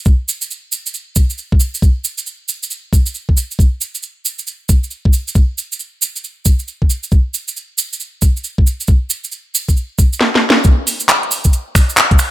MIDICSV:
0, 0, Header, 1, 2, 480
1, 0, Start_track
1, 0, Tempo, 441176
1, 65, Time_signature, 4, 2, 24, 8
1, 13391, End_track
2, 0, Start_track
2, 0, Title_t, "Drums"
2, 59, Note_on_c, 9, 69, 38
2, 64, Note_on_c, 9, 36, 115
2, 168, Note_off_c, 9, 69, 0
2, 173, Note_off_c, 9, 36, 0
2, 310, Note_on_c, 9, 69, 96
2, 419, Note_off_c, 9, 69, 0
2, 451, Note_on_c, 9, 69, 53
2, 551, Note_off_c, 9, 69, 0
2, 551, Note_on_c, 9, 69, 34
2, 660, Note_off_c, 9, 69, 0
2, 783, Note_on_c, 9, 69, 86
2, 892, Note_off_c, 9, 69, 0
2, 939, Note_on_c, 9, 69, 52
2, 1024, Note_off_c, 9, 69, 0
2, 1024, Note_on_c, 9, 69, 38
2, 1133, Note_off_c, 9, 69, 0
2, 1259, Note_on_c, 9, 69, 96
2, 1264, Note_on_c, 9, 36, 103
2, 1368, Note_off_c, 9, 69, 0
2, 1373, Note_off_c, 9, 36, 0
2, 1413, Note_on_c, 9, 69, 52
2, 1503, Note_off_c, 9, 69, 0
2, 1503, Note_on_c, 9, 69, 34
2, 1612, Note_off_c, 9, 69, 0
2, 1657, Note_on_c, 9, 36, 100
2, 1740, Note_on_c, 9, 69, 90
2, 1766, Note_off_c, 9, 36, 0
2, 1849, Note_off_c, 9, 69, 0
2, 1898, Note_on_c, 9, 69, 56
2, 1984, Note_on_c, 9, 36, 110
2, 1990, Note_off_c, 9, 69, 0
2, 1990, Note_on_c, 9, 69, 38
2, 2093, Note_off_c, 9, 36, 0
2, 2099, Note_off_c, 9, 69, 0
2, 2224, Note_on_c, 9, 69, 91
2, 2333, Note_off_c, 9, 69, 0
2, 2370, Note_on_c, 9, 69, 53
2, 2464, Note_off_c, 9, 69, 0
2, 2464, Note_on_c, 9, 69, 36
2, 2573, Note_off_c, 9, 69, 0
2, 2704, Note_on_c, 9, 69, 75
2, 2812, Note_off_c, 9, 69, 0
2, 2862, Note_on_c, 9, 69, 44
2, 2943, Note_off_c, 9, 69, 0
2, 2943, Note_on_c, 9, 69, 40
2, 3052, Note_off_c, 9, 69, 0
2, 3184, Note_on_c, 9, 36, 97
2, 3192, Note_on_c, 9, 69, 92
2, 3293, Note_off_c, 9, 36, 0
2, 3301, Note_off_c, 9, 69, 0
2, 3330, Note_on_c, 9, 69, 51
2, 3422, Note_off_c, 9, 69, 0
2, 3422, Note_on_c, 9, 69, 34
2, 3530, Note_off_c, 9, 69, 0
2, 3578, Note_on_c, 9, 36, 57
2, 3667, Note_on_c, 9, 69, 83
2, 3686, Note_off_c, 9, 36, 0
2, 3776, Note_off_c, 9, 69, 0
2, 3822, Note_on_c, 9, 69, 48
2, 3905, Note_on_c, 9, 36, 108
2, 3915, Note_off_c, 9, 69, 0
2, 3915, Note_on_c, 9, 69, 37
2, 4013, Note_off_c, 9, 36, 0
2, 4024, Note_off_c, 9, 69, 0
2, 4145, Note_on_c, 9, 69, 82
2, 4254, Note_off_c, 9, 69, 0
2, 4296, Note_on_c, 9, 69, 45
2, 4380, Note_off_c, 9, 69, 0
2, 4380, Note_on_c, 9, 69, 31
2, 4489, Note_off_c, 9, 69, 0
2, 4627, Note_on_c, 9, 69, 89
2, 4735, Note_off_c, 9, 69, 0
2, 4772, Note_on_c, 9, 69, 45
2, 4866, Note_off_c, 9, 69, 0
2, 4866, Note_on_c, 9, 69, 38
2, 4974, Note_off_c, 9, 69, 0
2, 5103, Note_on_c, 9, 69, 81
2, 5105, Note_on_c, 9, 36, 100
2, 5211, Note_off_c, 9, 69, 0
2, 5214, Note_off_c, 9, 36, 0
2, 5261, Note_on_c, 9, 69, 43
2, 5338, Note_off_c, 9, 69, 0
2, 5338, Note_on_c, 9, 69, 32
2, 5447, Note_off_c, 9, 69, 0
2, 5498, Note_on_c, 9, 36, 93
2, 5582, Note_on_c, 9, 69, 81
2, 5607, Note_off_c, 9, 36, 0
2, 5691, Note_off_c, 9, 69, 0
2, 5741, Note_on_c, 9, 69, 48
2, 5822, Note_off_c, 9, 69, 0
2, 5822, Note_on_c, 9, 69, 35
2, 5825, Note_on_c, 9, 36, 105
2, 5931, Note_off_c, 9, 69, 0
2, 5933, Note_off_c, 9, 36, 0
2, 6071, Note_on_c, 9, 69, 79
2, 6180, Note_off_c, 9, 69, 0
2, 6225, Note_on_c, 9, 69, 43
2, 6306, Note_off_c, 9, 69, 0
2, 6306, Note_on_c, 9, 69, 33
2, 6415, Note_off_c, 9, 69, 0
2, 6548, Note_on_c, 9, 69, 84
2, 6657, Note_off_c, 9, 69, 0
2, 6701, Note_on_c, 9, 69, 47
2, 6791, Note_off_c, 9, 69, 0
2, 6791, Note_on_c, 9, 69, 32
2, 6900, Note_off_c, 9, 69, 0
2, 7021, Note_on_c, 9, 69, 85
2, 7025, Note_on_c, 9, 36, 93
2, 7130, Note_off_c, 9, 69, 0
2, 7134, Note_off_c, 9, 36, 0
2, 7173, Note_on_c, 9, 69, 46
2, 7266, Note_off_c, 9, 69, 0
2, 7266, Note_on_c, 9, 69, 34
2, 7375, Note_off_c, 9, 69, 0
2, 7418, Note_on_c, 9, 36, 55
2, 7505, Note_on_c, 9, 69, 71
2, 7527, Note_off_c, 9, 36, 0
2, 7614, Note_off_c, 9, 69, 0
2, 7652, Note_on_c, 9, 69, 52
2, 7743, Note_off_c, 9, 69, 0
2, 7743, Note_on_c, 9, 69, 34
2, 7745, Note_on_c, 9, 36, 104
2, 7851, Note_off_c, 9, 69, 0
2, 7854, Note_off_c, 9, 36, 0
2, 7986, Note_on_c, 9, 69, 81
2, 8095, Note_off_c, 9, 69, 0
2, 8137, Note_on_c, 9, 69, 43
2, 8233, Note_off_c, 9, 69, 0
2, 8233, Note_on_c, 9, 69, 34
2, 8342, Note_off_c, 9, 69, 0
2, 8465, Note_on_c, 9, 69, 76
2, 8574, Note_off_c, 9, 69, 0
2, 8627, Note_on_c, 9, 69, 41
2, 8704, Note_off_c, 9, 69, 0
2, 8704, Note_on_c, 9, 69, 34
2, 8813, Note_off_c, 9, 69, 0
2, 8942, Note_on_c, 9, 69, 82
2, 8945, Note_on_c, 9, 36, 94
2, 9051, Note_off_c, 9, 69, 0
2, 9054, Note_off_c, 9, 36, 0
2, 9103, Note_on_c, 9, 69, 47
2, 9183, Note_off_c, 9, 69, 0
2, 9183, Note_on_c, 9, 69, 38
2, 9291, Note_off_c, 9, 69, 0
2, 9338, Note_on_c, 9, 36, 92
2, 9430, Note_on_c, 9, 69, 82
2, 9447, Note_off_c, 9, 36, 0
2, 9539, Note_off_c, 9, 69, 0
2, 9578, Note_on_c, 9, 69, 46
2, 9655, Note_off_c, 9, 69, 0
2, 9655, Note_on_c, 9, 69, 37
2, 9665, Note_on_c, 9, 36, 99
2, 9764, Note_off_c, 9, 69, 0
2, 9774, Note_off_c, 9, 36, 0
2, 9900, Note_on_c, 9, 69, 92
2, 10009, Note_off_c, 9, 69, 0
2, 10054, Note_on_c, 9, 69, 46
2, 10139, Note_off_c, 9, 69, 0
2, 10139, Note_on_c, 9, 69, 34
2, 10248, Note_off_c, 9, 69, 0
2, 10388, Note_on_c, 9, 69, 85
2, 10497, Note_off_c, 9, 69, 0
2, 10538, Note_on_c, 9, 36, 53
2, 10539, Note_on_c, 9, 69, 48
2, 10628, Note_off_c, 9, 69, 0
2, 10628, Note_on_c, 9, 69, 39
2, 10647, Note_off_c, 9, 36, 0
2, 10737, Note_off_c, 9, 69, 0
2, 10864, Note_on_c, 9, 69, 74
2, 10865, Note_on_c, 9, 36, 94
2, 10973, Note_off_c, 9, 69, 0
2, 10974, Note_off_c, 9, 36, 0
2, 11021, Note_on_c, 9, 69, 45
2, 11105, Note_on_c, 9, 38, 64
2, 11129, Note_off_c, 9, 69, 0
2, 11214, Note_off_c, 9, 38, 0
2, 11265, Note_on_c, 9, 38, 75
2, 11374, Note_off_c, 9, 38, 0
2, 11425, Note_on_c, 9, 38, 88
2, 11534, Note_off_c, 9, 38, 0
2, 11576, Note_on_c, 9, 69, 37
2, 11585, Note_on_c, 9, 36, 117
2, 11585, Note_on_c, 9, 42, 65
2, 11685, Note_off_c, 9, 69, 0
2, 11694, Note_off_c, 9, 36, 0
2, 11694, Note_off_c, 9, 42, 0
2, 11825, Note_on_c, 9, 46, 108
2, 11830, Note_on_c, 9, 69, 89
2, 11934, Note_off_c, 9, 46, 0
2, 11939, Note_off_c, 9, 69, 0
2, 11967, Note_on_c, 9, 69, 57
2, 11979, Note_on_c, 9, 42, 62
2, 12063, Note_off_c, 9, 69, 0
2, 12063, Note_on_c, 9, 69, 42
2, 12065, Note_on_c, 9, 39, 120
2, 12087, Note_off_c, 9, 42, 0
2, 12172, Note_off_c, 9, 69, 0
2, 12174, Note_off_c, 9, 39, 0
2, 12220, Note_on_c, 9, 42, 40
2, 12306, Note_on_c, 9, 46, 110
2, 12308, Note_on_c, 9, 69, 97
2, 12329, Note_off_c, 9, 42, 0
2, 12415, Note_off_c, 9, 46, 0
2, 12417, Note_off_c, 9, 69, 0
2, 12450, Note_on_c, 9, 69, 53
2, 12458, Note_on_c, 9, 36, 63
2, 12459, Note_on_c, 9, 42, 63
2, 12546, Note_off_c, 9, 42, 0
2, 12546, Note_off_c, 9, 69, 0
2, 12546, Note_on_c, 9, 42, 67
2, 12546, Note_on_c, 9, 69, 41
2, 12567, Note_off_c, 9, 36, 0
2, 12654, Note_off_c, 9, 69, 0
2, 12655, Note_off_c, 9, 42, 0
2, 12785, Note_on_c, 9, 36, 107
2, 12786, Note_on_c, 9, 26, 72
2, 12786, Note_on_c, 9, 46, 112
2, 12790, Note_on_c, 9, 69, 89
2, 12894, Note_off_c, 9, 36, 0
2, 12895, Note_off_c, 9, 26, 0
2, 12895, Note_off_c, 9, 46, 0
2, 12899, Note_off_c, 9, 69, 0
2, 12941, Note_on_c, 9, 69, 55
2, 13023, Note_off_c, 9, 69, 0
2, 13023, Note_on_c, 9, 69, 37
2, 13025, Note_on_c, 9, 39, 118
2, 13025, Note_on_c, 9, 42, 63
2, 13132, Note_off_c, 9, 69, 0
2, 13134, Note_off_c, 9, 39, 0
2, 13134, Note_off_c, 9, 42, 0
2, 13178, Note_on_c, 9, 36, 111
2, 13178, Note_on_c, 9, 42, 52
2, 13260, Note_on_c, 9, 69, 95
2, 13264, Note_on_c, 9, 26, 56
2, 13264, Note_on_c, 9, 46, 107
2, 13287, Note_off_c, 9, 36, 0
2, 13287, Note_off_c, 9, 42, 0
2, 13368, Note_off_c, 9, 69, 0
2, 13373, Note_off_c, 9, 26, 0
2, 13373, Note_off_c, 9, 46, 0
2, 13391, End_track
0, 0, End_of_file